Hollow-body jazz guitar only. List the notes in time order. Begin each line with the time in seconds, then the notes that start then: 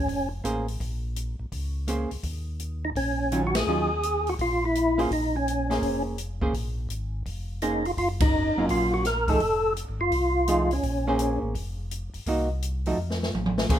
0.44 A#3 C#4 G#4 C5
1.88 A#3 C#4 G#4 C5
3.32 D#3 F#3 C#4 F4
3.68 D#3 F#3 C#4 F4
4.98 A#3 C#4 G#4 C5
5.70 A#3 C#4 G#4 C5
6.41 A#3 C#4 G#4 C5
7.62 A#3 C#4 G#4 C5
8.57 F#3 A#3 C#4 F4
9.29 F3 A3 D#4 G#4
10.48 F3 A3 D#4 G#4
11.07 A#3 C#4 G#4 C5
12.27 A#3 D#4 F#4
12.87 F3 A3 D#4 F#4
13.70 A#3 C#4 G#4 C5